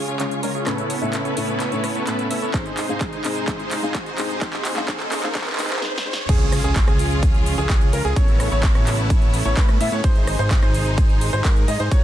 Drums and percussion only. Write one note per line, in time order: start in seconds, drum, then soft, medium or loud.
0.08 closed hi-hat soft
0.08 shaker soft
0.20 clap medium
0.20 closed hi-hat medium
0.20 shaker soft
0.31 closed hi-hat soft
0.31 shaker soft
0.43 open hi-hat loud
0.43 shaker medium
0.55 closed hi-hat soft
0.55 shaker soft
0.67 cross-stick medium
0.67 clap medium
0.67 closed hi-hat medium
0.67 shaker soft
0.78 closed hi-hat soft
0.78 shaker soft
0.90 open hi-hat loud
0.90 shaker medium
1.02 closed hi-hat soft
1.02 shaker soft
1.13 clap medium
1.13 closed hi-hat medium
1.13 shaker soft
1.25 closed hi-hat soft
1.25 shaker soft
1.37 open hi-hat loud
1.37 shaker medium
1.49 closed hi-hat soft
1.49 shaker soft
1.60 clap medium
1.60 closed hi-hat medium
1.60 shaker soft
1.72 closed hi-hat soft
1.72 shaker soft
1.84 cross-stick medium
1.84 open hi-hat loud
1.84 shaker medium
1.95 closed hi-hat soft
1.95 shaker soft
2.07 clap medium
2.07 closed hi-hat medium
2.07 shaker soft
2.19 closed hi-hat soft
2.19 shaker soft
2.31 open hi-hat loud
2.31 shaker medium
2.42 closed hi-hat soft
2.42 shaker soft
2.54 kick loud
2.54 clap medium
2.54 closed hi-hat medium
2.54 shaker soft
2.66 closed hi-hat soft
2.66 shaker soft
2.77 clap medium
2.77 open hi-hat loud
2.77 shaker medium
2.89 closed hi-hat soft
2.89 shaker soft
3.01 kick loud
3.01 clap medium
3.01 closed hi-hat medium
3.01 shaker soft
3.13 closed hi-hat soft
3.13 shaker soft
3.24 clap medium
3.24 open hi-hat loud
3.24 shaker medium
3.36 closed hi-hat soft
3.36 shaker soft
3.48 kick loud
3.48 clap medium
3.48 closed hi-hat medium
3.48 shaker soft
3.60 closed hi-hat soft
3.60 shaker soft
3.71 clap medium
3.71 open hi-hat loud
3.71 shaker medium
3.83 closed hi-hat soft
3.83 shaker soft
3.95 kick loud
3.95 clap medium
3.95 closed hi-hat medium
3.95 shaker soft
4.06 closed hi-hat soft
4.06 shaker soft
4.18 clap medium
4.18 open hi-hat loud
4.18 shaker medium
4.31 shaker soft
4.41 kick loud
4.41 clap medium
4.41 closed hi-hat medium
4.41 shaker soft
4.53 clap medium
4.53 closed hi-hat soft
4.53 shaker soft
4.65 clap loud
4.65 open hi-hat loud
4.65 shaker medium
4.77 clap medium
4.77 shaker soft
4.88 kick loud
4.88 clap loud
4.88 closed hi-hat medium
4.88 shaker soft
5.00 clap medium
5.00 closed hi-hat soft
5.00 shaker soft
5.12 clap loud
5.12 open hi-hat loud
5.12 shaker medium
5.23 clap medium
5.23 closed hi-hat soft
5.23 shaker soft
5.35 kick loud
5.35 clap loud
5.35 closed hi-hat medium
5.35 shaker soft
5.41 clap medium
5.47 clap medium
5.47 closed hi-hat soft
5.47 shaker soft
5.53 clap medium
5.59 clap loud
5.59 open hi-hat loud
5.59 shaker medium
5.64 clap medium
5.70 clap medium
5.70 closed hi-hat soft
5.70 shaker soft
5.76 clap medium
5.82 snare medium
5.98 snare medium
6.13 snare loud
6.29 kick loud
6.29 closed hi-hat loud
6.29 ride medium
6.29 crash loud
6.29 shaker soft
6.41 closed hi-hat soft
6.41 shaker soft
6.52 cross-stick medium
6.52 open hi-hat loud
6.52 shaker medium
6.64 closed hi-hat soft
6.64 shaker soft
6.76 kick loud
6.76 clap loud
6.76 closed hi-hat loud
6.76 ride medium
6.76 shaker soft
6.88 cross-stick medium
6.88 closed hi-hat soft
6.88 shaker soft
6.99 open hi-hat loud
6.99 shaker medium
7.11 closed hi-hat soft
7.11 shaker soft
7.23 kick loud
7.23 closed hi-hat loud
7.23 ride medium
7.23 shaker soft
7.35 closed hi-hat soft
7.35 shaker soft
7.46 open hi-hat loud
7.46 shaker medium
7.59 shaker soft
7.70 kick loud
7.70 clap loud
7.70 closed hi-hat loud
7.70 ride medium
7.70 shaker soft
7.81 closed hi-hat soft
7.81 shaker soft
7.93 open hi-hat loud
7.93 shaker medium
8.05 closed hi-hat soft
8.05 shaker soft
8.16 kick loud
8.16 closed hi-hat medium
8.16 ride medium
8.16 shaker soft
8.28 closed hi-hat soft
8.28 shaker soft
8.40 cross-stick medium
8.40 open hi-hat loud
8.40 shaker medium
8.52 closed hi-hat soft
8.52 shaker soft
8.63 kick loud
8.63 clap loud
8.63 closed hi-hat loud
8.63 ride medium
8.63 shaker soft
8.75 cross-stick medium
8.75 closed hi-hat soft
8.75 shaker soft
8.87 clap medium
8.87 open hi-hat loud
8.87 shaker medium
8.98 closed hi-hat soft
8.98 shaker soft
9.10 kick loud
9.10 closed hi-hat medium
9.10 ride medium
9.10 shaker soft
9.22 closed hi-hat soft
9.22 shaker soft
9.34 open hi-hat loud
9.34 shaker medium
9.46 shaker soft
9.57 kick loud
9.57 clap loud
9.57 closed hi-hat medium
9.57 ride medium
9.57 shaker soft
9.69 cross-stick medium
9.69 closed hi-hat soft
9.69 shaker soft
9.81 open hi-hat loud
9.81 shaker medium
9.93 shaker soft
10.04 kick loud
10.04 closed hi-hat medium
10.04 ride medium
10.04 shaker soft
10.16 closed hi-hat soft
10.16 shaker soft
10.27 cross-stick medium
10.27 open hi-hat loud
10.27 shaker medium
10.39 closed hi-hat soft
10.39 shaker soft
10.51 kick loud
10.51 clap loud
10.51 closed hi-hat medium
10.51 ride medium
10.51 shaker soft
10.63 cross-stick medium
10.63 closed hi-hat soft
10.63 shaker soft
10.74 open hi-hat loud
10.74 shaker medium
10.86 closed hi-hat soft
10.86 shaker soft
10.98 kick loud
10.98 closed hi-hat medium
10.98 ride medium
10.98 shaker soft
11.10 closed hi-hat soft
11.10 shaker soft
11.21 open hi-hat loud
11.21 shaker medium
11.33 closed hi-hat soft
11.33 shaker soft
11.45 kick loud
11.45 clap loud
11.45 closed hi-hat medium
11.45 ride medium
11.45 shaker soft
11.56 closed hi-hat soft
11.56 shaker soft
11.68 open hi-hat loud
11.68 shaker medium
11.80 shaker soft
11.91 kick loud
11.91 closed hi-hat medium
11.91 ride medium
11.91 shaker soft